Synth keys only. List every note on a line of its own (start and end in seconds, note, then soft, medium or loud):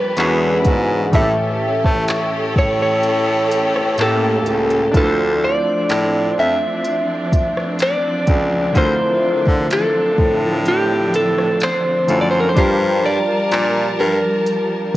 0.00 0.13 G3 medium
0.00 0.13 D4 medium
0.00 0.14 F4 medium
0.00 0.15 G4 medium
0.00 0.16 D5 medium
0.17 1.11 E3 medium
0.17 1.13 B3 medium
0.17 1.13 C#4 medium
0.17 1.14 D4 medium
0.17 1.14 F#4 medium
0.17 1.14 G#4 medium
1.11 3.94 A2 medium
1.11 3.94 E3 medium
1.11 1.20 A#3 medium
1.15 3.96 G4 medium
1.15 3.97 A4 medium
1.20 3.98 C#4 medium
3.98 4.94 A2 medium
3.98 4.92 A3 medium
3.98 4.95 A#3 medium
3.98 4.95 C#4 medium
3.98 4.95 G4 medium
4.92 8.71 A3 medium
4.92 8.70 D4 medium
4.92 8.71 E4 medium
4.96 8.72 F4 medium
4.96 5.02 B4 medium
5.04 8.76 C5 medium
8.73 12.03 D3 medium
8.73 12.04 A3 medium
8.73 12.05 E4 medium
8.77 12.05 F4 medium
8.77 8.83 A#4 medium
8.85 12.09 C5 medium
12.07 12.56 D3 medium
12.07 12.56 A3 soft
12.07 12.56 E4 soft
12.07 12.56 F4 soft
12.07 12.57 A4 medium
12.54 14.97 G3 medium
12.54 14.97 D4 medium
12.54 14.97 F4 medium
12.58 14.97 G4 medium
12.58 14.97 A#4 medium